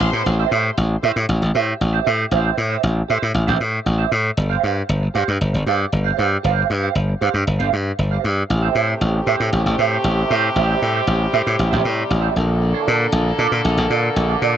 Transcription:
Already playing: french horn section B2 C3 G4, string section C5 C6
0.00 slap bass A1, muted clean electric guitar stroke
0.13 slap bass A2, clean electric guitar C4 G4 B4
0.26 slap bass A1, muted clean electric guitar stroke
0.40 clean electric guitar G4 C5 E5
0.51 slap bass A2, clean electric guitar G4 C5 E5
0.64 muted clean electric guitar stroke
0.77 slap bass A1
0.91 muted clean electric guitar stroke
1.03 slap bass A2, clean electric guitar G4 C5 E5
1.16 slap bass A2, muted clean electric guitar stroke
1.29 slap bass A1
1.41 slap bass A1, muted clean electric guitar stroke
1.54 slap bass A2, clean electric guitar G4 C5 E5
1.67 muted clean electric guitar stroke
1.80 slap bass A1, muted clean electric guitar stroke
1.93 clean electric guitar G4 C5 E5
2.04 slap bass A2, clean electric guitar G4 C5 E5
2.19 muted clean electric guitar stroke
2.31 slap bass A1, clean electric guitar G4 C5 E5
2.56 slap bass A2, muted clean electric guitar stroke
2.69 clean electric guitar G4 C5 E5
2.82 slap bass A1, muted clean electric guitar stroke
2.96 muted clean electric guitar stroke
3.08 slap bass A2, clean electric guitar G4 C5 E5
3.22 slap bass A2, muted clean electric guitar stroke
3.34 slap bass A1, muted clean electric guitar stroke
3.47 slap bass A1, clean electric guitar G4 C5 E5
3.60 slap bass A2, muted clean electric guitar stroke
3.72 muted clean electric guitar stroke
3.85 slap bass A1, muted clean electric guitar stroke
3.98 clean electric guitar G4 C5 E5
4.11 slap bass A2, muted clean electric guitar stroke
4.24 muted clean electric guitar stroke
4.37 slap bass G1, muted clean electric guitar stroke
4.50 clean electric guitar G4 C5 F5
4.63 slap bass G2, clean electric guitar G4 C5 F5
4.76 muted clean electric guitar stroke
4.89 slap bass G1
5.02 muted clean electric guitar stroke
5.14 slap bass G2, clean electric guitar G4 C5 F5
5.27 slap bass G2, muted clean electric guitar stroke
5.41 slap bass G1
5.53 slap bass G1, muted clean electric guitar stroke
5.66 slap bass G2, clean electric guitar G4 C5 F5
5.79 muted clean electric guitar stroke
5.92 slap bass G1, muted clean electric guitar stroke
6.04 clean electric guitar G4 C5 F5
6.17 slap bass G2, clean electric guitar G4 C5 F5
6.30 muted clean electric guitar stroke
6.43 slap bass G1, clean electric guitar G4 C5 F5
6.69 slap bass G2, muted clean electric guitar stroke
6.81 clean electric guitar G4 C5 F5
6.94 slap bass G1, muted clean electric guitar stroke
7.08 muted clean electric guitar stroke
7.21 slap bass G2, clean electric guitar G4 C5 F5
7.33 slap bass G2, muted clean electric guitar stroke
7.47 slap bass G1, muted clean electric guitar stroke
7.59 slap bass G1, clean electric guitar G4 C5 F5
7.73 slap bass G2, muted clean electric guitar stroke
7.85 muted clean electric guitar stroke
7.99 slap bass G1, muted clean electric guitar stroke
8.11 clean electric guitar G4 C5 F5
8.24 slap bass G2
8.37 muted clean electric guitar stroke
8.50 slap bass A1, french horn section C3 A3 G4, muted clean electric guitar stroke
8.63 clean electric guitar G4 C5 E5
8.75 slap bass A2, clean electric guitar G4 C5 E5
8.88 muted clean electric guitar stroke
9.01 slap bass A1
9.14 muted clean electric guitar stroke
9.26 slap bass A2, clean electric guitar G4 C5 E5
9.39 slap bass A2, muted clean electric guitar stroke
9.53 slap bass A1
9.66 slap bass A1, muted clean electric guitar stroke
9.78 slap bass A2, clean electric guitar G4 C5 E5
9.91 muted clean electric guitar stroke
10.04 slap bass A1, muted clean electric guitar stroke
10.17 clean electric guitar G4 C5 E5
10.30 slap bass A2, clean electric guitar G4 C5 E5
10.43 muted clean electric guitar stroke
10.56 slap bass A1, french horn section G3, clean electric guitar G4 C5 E5
10.81 slap bass A2, muted clean electric guitar stroke
10.94 clean electric guitar G4 C5 E5
11.07 slap bass A1, muted clean electric guitar stroke
11.19 muted clean electric guitar stroke
11.33 slap bass A2, clean electric guitar G4 C5 E5
11.45 slap bass A2, muted clean electric guitar stroke
11.58 slap bass A1, muted clean electric guitar stroke
11.71 slap bass A1, clean electric guitar G4 C5 E5
11.84 slap bass A2, muted clean electric guitar stroke
11.96 muted clean electric guitar stroke
12.09 slap bass A1, muted clean electric guitar stroke
12.21 clean electric guitar G4 C5 E5
12.35 slap bass A#1, french horn section D3 A#3 A4, muted clean electric guitar stroke
12.48 muted clean electric guitar stroke
12.60 muted clean electric guitar stroke
12.73 clean electric guitar F4 A4 D5
12.86 slap bass A#2, clean electric guitar F4 A4 D5
12.98 muted clean electric guitar stroke
13.12 slap bass A#1
13.25 muted clean electric guitar stroke
13.38 slap bass A#2, clean electric guitar F4 A4 D5
13.51 slap bass A#2, muted clean electric guitar stroke
13.65 slap bass A#1
13.77 slap bass A#1, muted clean electric guitar stroke
13.90 slap bass A#2, clean electric guitar F4 A4 D5
14.03 muted clean electric guitar stroke
14.16 slap bass A#1, muted clean electric guitar stroke
14.28 clean electric guitar F4 A4 D5
14.42 slap bass A#2, clean electric guitar F4 A4 D5

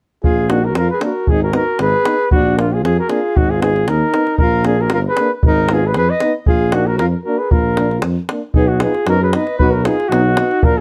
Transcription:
0.24 tuba A#1, alto saxophone F4, flugelhorn G#4, davul low
0.50 euphonium A#3, trombone D4, alto saxophone D#4, flugelhorn F#4, davul high
0.65 alto saxophone F#4, flugelhorn A#4
0.74 tuba F2, flugelhorn A#4, davul high
0.79 alto saxophone F4
0.90 alto saxophone G#4, flugelhorn B4
1.01 euphonium A#3, trombone D4, flugelhorn A#4, davul high
1.06 alto saxophone F#4
1.27 tuba G#1, alto saxophone D#4, flugelhorn G#4, davul low
1.43 alto saxophone F#4, flugelhorn A#4
1.53 euphonium B3, trombone D#4, flugelhorn A#4, davul high
1.58 alto saxophone F#4
1.79 tuba G#1, alto saxophone G#4, flugelhorn B4, davul high
2.04 euphonium B3, trombone D#4, davul high
2.31 tuba A#1, alto saxophone D4, flugelhorn F#4, davul low
2.56 euphonium A#3, trombone D4, alto saxophone D4, flugelhorn F4, davul high
2.72 alto saxophone F4, flugelhorn G#4
2.84 tuba F2, alto saxophone F4, flugelhorn G#4, davul high
2.99 alto saxophone F#4, flugelhorn A#4
3.08 euphonium A#3, trombone D4, alto saxophone F4, flugelhorn G#4, davul high
3.36 tuba G#1, alto saxophone D#4, flugelhorn F#4, davul low
3.50 alto saxophone F4, flugelhorn G#4
3.60 euphonium B3, trombone D#4, flugelhorn G#4, davul high
3.64 alto saxophone F4
3.76 davul high
3.88 tuba D#2, alto saxophone D#4, flugelhorn A#4, davul high
4.13 euphonium B3, trombone D#4, davul high
4.27 davul high
4.38 tuba A#1, alto saxophone F4, flugelhorn A#4, davul low
4.65 euphonium A#3, trombone D4, flugelhorn G#4, davul high
4.69 alto saxophone F4
4.81 alto saxophone F#4, flugelhorn A#4
4.90 tuba G1, alto saxophone F4, davul high
4.94 flugelhorn A#4
5.07 alto saxophone G#4, flugelhorn B4
5.17 euphonium A#3, trombone D4, davul high
5.43 tuba G#1, alto saxophone D#4, flugelhorn A#4, davul low
5.69 euphonium B3, trombone D#4, alto saxophone F4, davul high
5.73 flugelhorn G#4
5.85 alto saxophone G#4, flugelhorn B4
5.94 tuba F2, alto saxophone G#4, flugelhorn B4, davul high
6.09 alto saxophone B4, flugelhorn D#5
6.20 euphonium B3, trombone D#4, davul high
6.46 tuba A#1, alto saxophone F4, flugelhorn G#4, davul low
6.72 euphonium A#3, trombone D4, alto saxophone D#4, flugelhorn F#4, davul high
6.87 alto saxophone F#4, flugelhorn A#4
6.99 tuba F2, alto saxophone F4, flugelhorn A#4, davul high
7.24 euphonium A#3, trombone D4, alto saxophone F#4, flugelhorn A#4
7.38 alto saxophone G#4, flugelhorn B4
7.51 tuba A#1, alto saxophone F4, flugelhorn A#4, davul low
7.77 euphonium A#3, trombone D4, davul high
7.91 davul high
8.02 tuba F2, davul high
8.29 euphonium A#3, trombone D4, davul high
8.54 tuba B1, euphonium B3, alto saxophone D#4, trombone D#4, flugelhorn G#4, davul low
8.68 alto saxophone D#4, flugelhorn F#4
8.80 euphonium B3, trombone D#4, alto saxophone F4, flugelhorn G#4, davul high
8.95 davul high
9.07 tuba F#2, euphonium B3, trombone D#4, alto saxophone F#4, flugelhorn A#4, davul high
9.22 alto saxophone G#4, flugelhorn B4
9.33 euphonium B3, trombone D#4, alto saxophone B4, flugelhorn D#5, davul high
9.47 davul high
9.58 tuba B1, euphonium B3, trombone D#4, alto saxophone F#4, flugelhorn B4, davul low
9.71 flugelhorn A#4
9.76 alto saxophone F#4
9.85 euphonium B3, trombone D#4, alto saxophone F4, flugelhorn G#4, davul high
10.00 davul high
10.09 tuba B1, alto saxophone D#4, flugelhorn F#4, davul high
10.13 euphonium B3, trombone D#4
10.37 euphonium B3, trombone D#4, davul high
10.51 davul high
10.63 tuba A#1, euphonium A#3, trombone D4, alto saxophone F4, flugelhorn A#4, davul low

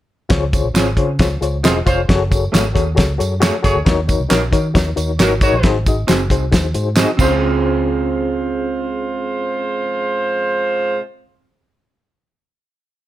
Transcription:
0.29 fingered electric bass C#2, reed electric piano C#3 F4 G#4 C5 C#5, kick, snare, closed hi-hat
0.53 reed electric piano F4 G#4 C5 C#5, kick, closed hi-hat, tambourine
0.64 fingered electric bass A#1
0.74 fingered electric bass G#1, clean electric guitar C4 F4 G#4, reed electric piano F4 G#4 C5 C#5, snare, clap, closed hi-hat, tambourine
0.97 fingered electric bass C#3, reed electric piano F4 G#4 C5 C#5, kick, closed hi-hat
1.19 fingered electric bass C#2, reed electric piano F4 G#4 C5 C#5, kick, snare, closed hi-hat, tambourine
1.41 fingered electric bass C#2, reed electric piano F4 G#4 C5 C#5, closed hi-hat, tambourine
1.63 fingered electric bass E1, horn section G#3 F4 C5, clean electric guitar C4 F4 G#4, reed electric piano F4 G#4 C5 D#5, snare, clap, closed hi-hat, tambourine
1.86 fingered electric bass F1, horn section G#3 F4 C5, reed electric piano F4 G#4 C5 C#5, kick, closed hi-hat, tambourine
2.09 fingered electric bass F#1, reed electric piano F#4 G#4 A4 C#5, kick, snare, closed hi-hat
2.30 reed electric piano F#4 G#4 A4 C#5, kick, closed hi-hat, tambourine
2.52 fingered electric bass G#1, clean electric guitar A3 C#4 G#4, reed electric piano F#4 G#4 A4 C#5, snare, clap, closed hi-hat, tambourine
2.73 fingered electric bass D#2, reed electric piano F#4 G#4 A4 C#5, kick, closed hi-hat, tambourine
2.95 fingered electric bass C#2, reed electric piano F#4 G#4 A4 C#5, kick, snare, closed hi-hat
3.00 tambourine
3.18 fingered electric bass F#2, reed electric piano F#4 G#4 A4 C#5, closed hi-hat, tambourine
3.40 horn section A3 G#4 C#5, clean electric guitar A3 C#4 G#4, reed electric piano F#4 G#4 A4 C#5, snare, clap, closed hi-hat, tambourine
3.62 fingered electric bass F#1, horn section A3 G#4 C#5, reed electric piano F#4 G#4 A4 C#5, kick, snare, closed hi-hat, tambourine
3.76 fingered electric bass D2
3.85 fingered electric bass D#2, reed electric piano D#3 D#4 F#4 A#4 C#5, kick, snare, closed hi-hat, tambourine
4.07 reed electric piano D#4 F#4 A#4 C#5, kick, closed hi-hat, tambourine
4.20 fingered electric bass C2
4.29 fingered electric bass A#1, clean electric guitar C#4 F#4 A#4, reed electric piano D#4 F#4 A#4 C#5, snare, clap, closed hi-hat, tambourine
4.52 fingered electric bass D#3, reed electric piano D#4 F#4 A#4 C#5, kick, closed hi-hat, tambourine
4.74 fingered electric bass D#2, reed electric piano D#4 F#4 A#4 C#5, kick, snare, closed hi-hat, tambourine
4.96 fingered electric bass D#2, reed electric piano D#4 F#4 A#4 C#5, closed hi-hat, tambourine
5.19 fingered electric bass G#1, horn section A#3 F#4 C#5, clean electric guitar C#4 F#4 A#4, reed electric piano D#4 F#4 A#4 C#5, snare, clap, closed hi-hat, tambourine
5.41 horn section G#3 F#4 C#5, reed electric piano D#4 F#4 A#4 C#5, kick, closed hi-hat, tambourine
5.52 fingered electric bass A#1
5.63 fingered electric bass G#1, reed electric piano G#2 D#4 F#4 G#4 C5, kick, snare, closed hi-hat
5.86 reed electric piano D#4 F#4 G#4 D#5, kick, closed hi-hat, tambourine
6.07 fingered electric bass F#1, clean electric guitar C4 F#4 G#4, reed electric piano D#4 F#4 G#4 C5, snare, clap, closed hi-hat, tambourine
6.30 fingered electric bass C2, reed electric piano D#4 F#4 G#4 C5, kick, closed hi-hat, tambourine
6.51 fingered electric bass D#2, reed electric piano D#4 F#4 G#4 C5, kick, snare, closed hi-hat, tambourine
6.74 fingered electric bass G#2, reed electric piano D#4 F#4 G#4 C5, closed hi-hat, tambourine
6.96 horn section G#3 F#4 C5, clean electric guitar C4 F#4 G#4, reed electric piano D#4 F#4 G#4 D#5, snare, clap, closed hi-hat, tambourine
7.16 reed electric piano C#2 C#4 F4 G#4, fingered electric bass C#2, horn section G#3 F4 C5, clean electric guitar C4 F4, kick, crash, tambourine
7.21 clean electric guitar G#4, reed electric piano C5

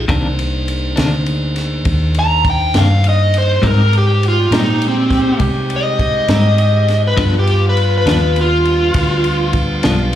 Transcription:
0.08 fingered electric bass C2, clean electric guitar C3 D#3 A#3 D4, tonewheel organ A#3 D4 D#4 C5, kick, ride
0.39 ride
0.68 ride
0.96 fingered electric bass D2, clean electric guitar C3 D#3 A#3 D4, snare, ride
1.26 ride
1.56 snare, ride
1.85 fingered electric bass D#2, kick, ride
2.15 ride
2.19 lead electric guitar A#5
2.45 kick, ride
2.50 lead electric guitar G5
2.74 fingered electric bass G2, clean electric guitar C3 D#3 A#3 D4, snare, ride
2.79 lead electric guitar F5
3.04 ride
3.09 lead electric guitar D#5
3.34 ride
3.38 lead electric guitar C5
3.62 clean electric guitar G#2 G3 C4 D#4, fingered electric bass G#2, horn section G3 G#3 C4 G4, tonewheel organ G#3 D#4 G4 C5, kick, ride
3.67 lead electric guitar A#4
3.93 ride
3.98 lead electric guitar G4
4.23 ride
4.28 lead electric guitar F4
4.51 clean electric guitar G#2 G3 C4 D#4, fingered electric bass A#2, snare, ride
4.57 lead electric guitar D#4
4.82 ride
4.88 lead electric guitar C4
5.11 kick, snare, ride
5.40 fingered electric bass C3, kick, ride
5.70 ride
5.76 lead electric guitar D#5
5.99 kick, ride
6.28 fingered electric bass G#2, clean electric guitar G#2 G3 C4 D#4, snare, ride
6.58 ride
6.88 snare, ride
7.07 lead electric guitar B4
7.17 clean electric guitar G2 F3 B3 D4, fingered electric bass G2, horn section F3 G3 B3 F4, tonewheel organ G3 D4 F4 B4, kick, ride
7.39 lead electric guitar G4
7.47 ride
7.69 lead electric guitar B4
7.77 ride
7.98 lead electric guitar B4
8.06 fingered electric bass D#2, clean electric guitar G2 F3 B3 D4, snare, ride
8.36 ride
8.41 lead electric guitar F4
8.65 ride
8.94 fingered electric bass D2, kick, ride
9.24 ride
9.53 kick, ride
9.83 fingered electric bass B1, clean electric guitar G2 F3 B3 D4, snare, ride

